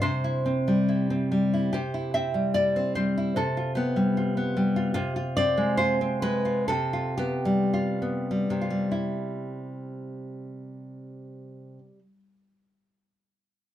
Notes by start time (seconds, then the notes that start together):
0.02 C3 C5
0.24 E4
0.46 C4
0.68 G3
0.89 E4
1.10 C4
1.32 G3
1.54 E4
1.73 C3 G4
1.94 E4
2.14 C4 E5
2.34 G3
2.54 E4 D5
2.76 C4
2.95 G3 C5
3.18 E4
3.36 C3 A4
3.57 F4
3.75 B3 G4
3.96 G3
4.17 F4
4.37 B3
4.57 G3
4.76 F4
4.94 C3 F4
5.16 F4
5.37 C4 D5
5.57 G#3
5.77 F4 C5
6.01 C4
6.22 G#3 B4
6.45 F4
6.68 C3 A4
6.93 F4
7.18 B3 G4
7.45 G3
7.74 F4
8.02 B3
8.31 G3
8.50 C3
8.61 F4
8.70 G3
8.91 E4